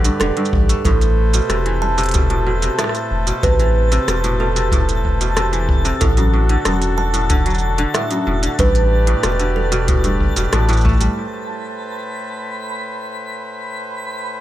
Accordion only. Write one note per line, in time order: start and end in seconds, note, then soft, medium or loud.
0.00 0.82 A3 medium
0.00 0.82 G4 medium
0.00 0.82 B4 medium
0.00 0.82 D5 medium
0.85 5.97 A3 medium
0.85 8.55 A4 medium
0.85 5.97 B4 medium
0.85 5.97 C5 medium
6.01 8.57 D4 medium
6.01 8.56 F#4 medium
8.59 11.15 A3 medium
8.59 11.15 G4 medium
8.59 11.15 B4 medium
8.59 11.15 D5 medium
11.17 14.40 A2 medium
11.17 14.40 A3 medium
11.17 14.40 B4 medium
11.17 14.40 C5 medium